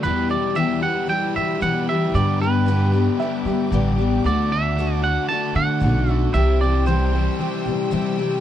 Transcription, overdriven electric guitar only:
X:1
M:4/4
L:1/8
Q:1/4=114
K:Em
V:1 name="Overdriven electric guitar"
[E,,B,,E,G,B,G] [E,G,B,G] [E,G,B,G] [E,G,B,G] [E,,B,,E,G,B,G]2 [E,G,B,G] [E,G,B,G] | [G,,D,G,B,DG] [G,B,DG] [G,B,DG] [G,B,DG] [G,,D,G,B,DG]2 [G,B,DG] [G,B,DG] | [D,A,DF] [A,DF] [D,A,DF] [A,DF] [D,A,DF]2 [D,A,DF] [A,DF] | [C,E,G,CG] [G,CG] [E,G,CG] [G,CG] [C,E,G,CG]2 [E,G,CG] [G,CG] |]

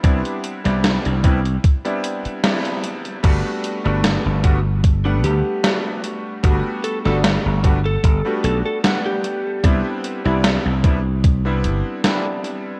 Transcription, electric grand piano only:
X:1
M:4/4
L:1/16
Q:"Swing 16ths" 1/4=75
K:G
V:1 name="Electric grand piano"
[G,B,CDE]3 [G,B,CDE]3 [G,B,CDE] z2 [G,B,CDE]3 [G,B,CDE]4 | [G,A,B,DF]3 [G,A,B,DF]3 [G,A,B,DF] z2 [G,A,B,Df]3 [G,A,B,DF]4 | [G,A,B,DF]3 [G,A,B,DF]3 [G,A,B,DF] z2 [G,A,B,DF]3 [G,A,B,Df]4 | [G,B,CDE]3 [G,B,CDE]3 [G,B,CDE] z2 [G,B,CDE]3 [G,B,CDE]4 |]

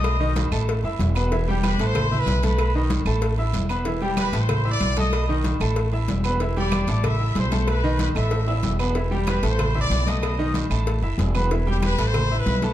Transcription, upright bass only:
X:1
M:4/4
L:1/8
Q:1/4=188
K:Em
V:1 name="Upright bass" clef=bass
B,,,3 A,,,2 F,,, E,,,2- | E,,,3 A,,,3 B,,,2- | B,,,3 A,,,3 E,,,2- | E,,,3 A,,,3 B,,,2- |
B,,,3 A,,,3 E,,,2- | E,,,3 A,,,3 B,,,2- | B,,,3 A,,,3 E,,,2- | E,,,3 A,,,3 B,,,2- |
B,,,3 A,,,2 F,,, E,,,2- | E,,,3 A,,,3 B,,,2 |]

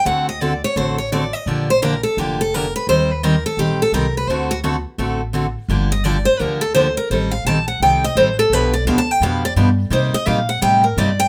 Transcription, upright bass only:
X:1
M:4/4
L:1/8
Q:"Swing" 1/4=170
K:Gm
V:1 name="Upright bass" clef=bass
D,,4 A,,,4 | B,,,4 F,,,4 | E,,4 B,,,2 C,,2 | D,,4 A,,,4 |
G,,,4 D,,4 | A,,,2 B,,,2 C,,2 A,,,2 | =B,,,2 D,,2 F,,2 G,,2 | C, z B,,2 A,,2 G,,2 |]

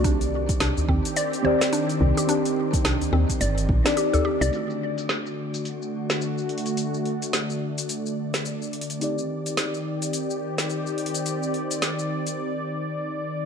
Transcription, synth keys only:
X:1
M:4/4
L:1/16
Q:"Swing 16ths" 1/4=107
K:none
V:1 name="Synth keys"
[C_EGd]8- [CEGd]2 [_E,CGd]6 | [C_EGd]8- [CEGd]2 z [CEGd]2 [CEGd]3 | [A,D^Fd]16- | [A,D^Fd]16 |
[C_EGd]16- | [C_EGd]8 z8 |]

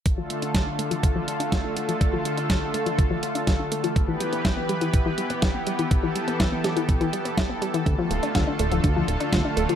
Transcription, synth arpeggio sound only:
X:1
M:4/4
L:1/16
Q:1/4=123
K:Ddor
V:1 name="Synth arpeggio sound"
D, F, A, D F D A, F, D, F, A, D F D A, F, | D, F, A, D F D A, F, D, F, A, D F D A, F, | B,, E, G, B, E B, G, E, B,, E, G, B, E B, G, E, | B,, E, G, B, E B, G, E, B,, E, G, B, E B, G, E, |
D, F, A, D F D A, F, D, F, A, D F D A, F, |]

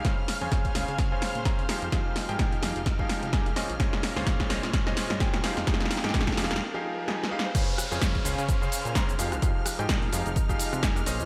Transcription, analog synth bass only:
X:1
M:4/4
L:1/16
Q:"Swing 16ths" 1/4=128
K:Fm
V:1 name="Analog synth bass" clef=bass
D,, z2 F,, F,,2 D,, D,3 z B,,2 D, z F,, | F,, z2 A,, B,,2 F,, F,,,3 z C,2 F,,, z B,,, | B,,, z2 D,, E,,2 B,,, B,,3 z G,,2 B,, z F,, | F,, z2 A,, B,,2 F,, F,,, z8 |
D,, z2 F,, F,,2 D,, D,3 z B,, D,2 F,, C,, | F,, z2 A,, B,,2 F,, F,,,3 z C, F,,,2 B,,, F,, |]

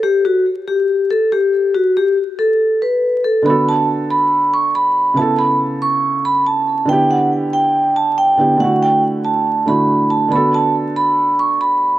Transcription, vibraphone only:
X:1
M:4/4
L:1/8
Q:1/4=140
K:Bm
V:1 name="Vibraphone"
G F z G2 A G2 | F G z A2 B2 A | b a z b2 c' b2 | a b z c'2 b a2 |
g f z g2 a g2 | f g z a2 b2 a | b a z b2 c' b2 |]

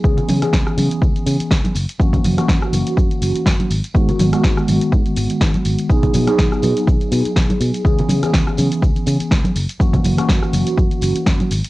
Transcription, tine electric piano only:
X:1
M:4/4
L:1/16
Q:"Swing 16ths" 1/4=123
K:F#mix
V:1 name="Tine electric piano"
[E,B,CG]3 [E,B,CG]8- [E,B,CG]3 z2 | [E,A,CF]3 [E,A,CF]8- [E,A,CF]3 z2 | [D,G,B,F]3 [D,G,B,F]12- [D,G,B,F] | [F,B,DG]3 [F,B,DG]12- [F,B,DG] |
[E,B,CG]3 [E,B,CG]8- [E,B,CG]3 z2 | [E,A,CF]3 [E,A,CF]8- [E,A,CF]3 z2 |]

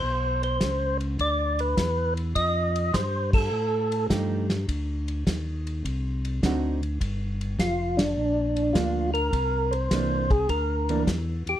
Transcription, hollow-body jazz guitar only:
X:1
M:4/4
L:1/8
Q:"Swing" 1/4=103
K:Fmix
V:1 name="Hollow-body jazz guitar"
z8 | z6 [F,A,EG] z | z6 [D,CE^F] z | z6 [F,B,D] z |
z2 [=E,B,D] z2 [E,B,D] z2 |]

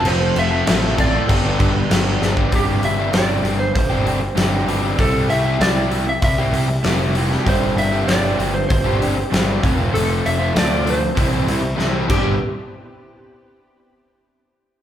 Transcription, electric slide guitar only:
X:1
M:4/4
L:1/16
Q:1/4=97
K:Gmix
V:1 name="Electric slide guitar"
c2 e4 d6 z4 | G2 e2 d3 c c6 z2 | A2 e2 d3 e e6 z2 | c2 e2 d3 c c6 z2 |
A2 e2 d2 c8 G2 | z16 |]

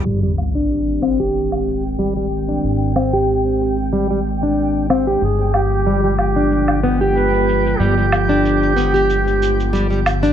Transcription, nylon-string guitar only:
X:1
M:4/4
L:1/16
Q:"Swing 16ths" 1/4=93
K:none
V:1 name="Nylon-string guitar"
G, G, z D3 C G4 z G, G, z D- | D2 C G4 z G, G, z D3 C G | z4 G, G, z D3 B, G4 z | G, G, z D3 B, G4 z G, G, z D |]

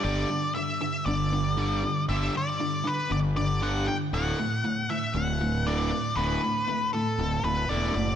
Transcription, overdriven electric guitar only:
X:1
M:4/4
L:1/8
Q:1/4=118
K:Glyd
V:1 name="Overdriven electric guitar" clef=bass
[G,,D,G,] [G,,D,] [G,,D,] [G,,D,] [G,,D,] [G,,D,] [G,,D,G,] [G,,D,] | [G,,D,G,] [G,,D,] [G,,D,] [G,,D,] [G,,D,] [G,,D,] [G,,D,G,] [G,,D,] | [D,,A,,D,] [D,,A,,] [D,,A,,] [D,,A,,] [D,,A,,] [D,,A,,] [D,,A,,D,] [D,,A,,] | [D,,A,,D,] [D,,A,,] [D,,A,,] [D,,A,,] [D,,A,,] [D,,A,,] [D,,A,,D,] [D,,A,,] |]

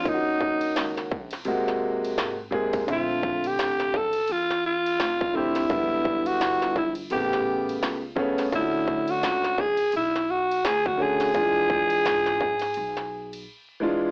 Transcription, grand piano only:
X:1
M:4/4
L:1/8
Q:"Swing 16ths" 1/4=85
K:Ephr
V:1 name="Grand piano"
[^D,^A,^CF^F]3 z [^B,,^G,A,F]2 z [B,,G,A,^G] | [D,A,Ce]3 z4 [D,A,CG] | [D,G,B,E]3 z [C,^C,A,B,G]2 z [C,A,B,^C] | [A,^CDF^F]3 z4 [D,A,CF] |
[E,^G,DF]3 z4 [E,G,DF] |]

